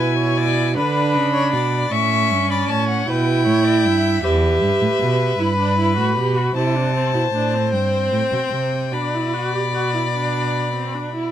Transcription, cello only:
Already playing: B2
0.76 D3
1.15 C#3
1.53 B2
1.91 A2
2.31 G2
2.69 A2
3.08 B2
3.46 A2
3.85 G2
4.23 E2
4.62 G2
4.81 A2
5.01 B2
5.39 G2
5.97 A2
6.16 B2
6.55 C3
7.14 B2
7.33 A2
7.72 G2
8.12 A2
8.32 B2
8.51 C3
8.92 B2

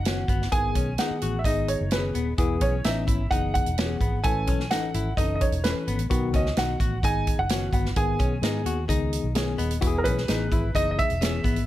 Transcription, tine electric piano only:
0.06 D#3 B3 F#4
0.52 D#3 B3 G#4
1.00 D#3 B3 G#4
1.46 D#3 B3 G#4
1.92 D#3 B3 F#4
1.98 G#4
2.38 E3 B3 G#4
2.86 E3 B3 C#4
3.33 E3 B3 G#4
3.79 E3 B3 F#4
3.85 G#4
4.26 E3 C#4 A4
4.72 E3 C#4 A4
5.18 E3 C4 A4
5.24 C#4
5.64 E3 C#4 A4
6.10 D#3 B3 F#4
6.57 D#3 B3 F#4
7.04 D#3 B3 G#4
7.51 D#3 B3 F#4
7.97 D#3 B3 G#4
8.42 D#3 B3 G#4
8.89 D#3 B3 G#4
9.35 D#3 B3 G#4 G#5
9.58 D#5
9.81 E3 B3 F#4
9.87 G#4
10.28 E3 B3 G#4
10.75 E3 B3 G#4
11.21 E3 B3 G#4

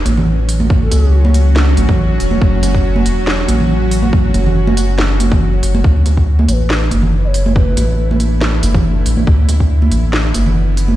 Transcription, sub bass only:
0.06 A1
0.92 C#2
1.77 A1
2.20 E1
2.42 F#1
3.06 E1
3.49 A1
4.35 F#1
5.63 F#1
5.84 D2
6.49 A1
6.92 F#1
7.77 A1
8.63 F#1
9.06 A1
9.27 D2
9.92 A1
10.35 F#1

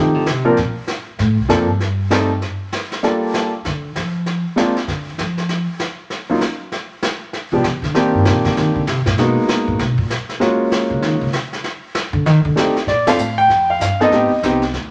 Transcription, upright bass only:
Already playing: D#3
0.14 D3
0.27 C3
0.58 A#2
1.19 A2
1.37 C2
1.50 F2
1.68 G2
3.66 D3
3.96 F3
4.88 D3
5.18 F3
7.52 C3
7.64 C#3
7.82 D3
7.95 D#3
8.14 G2
8.26 A#2
8.45 D3
8.57 D#3
8.75 D3
8.88 C3
9.06 A#2
9.18 B2
9.68 A#2
9.79 B2
9.98 A#2
10.90 C#3
11.03 D#3
11.21 C#3
12.13 D3
12.26 D#3
12.45 D3
12.87 A#2
13.17 A2
13.48 F2
13.80 G2
14.11 A2
14.31 muted upright bass stroke
14.43 C2
14.73 D2

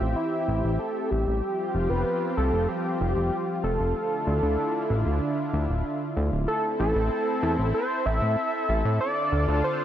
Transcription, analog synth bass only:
0.01 A1
0.48 A1
0.64 A1
1.12 A1
1.27 A1
1.75 F1
1.91 F1
2.38 C2
2.54 F1
3.01 F1
3.17 F1
3.64 F1
3.80 F1
4.27 D2
4.43 D2
4.90 A1
5.06 D2
5.53 D2
5.69 D1
6.17 D2
6.32 D1
6.80 A1
6.96 A1
7.43 E2
7.59 A1
8.06 A1
8.22 A2
8.69 A1
8.85 A2
9.32 D2
9.48 D2

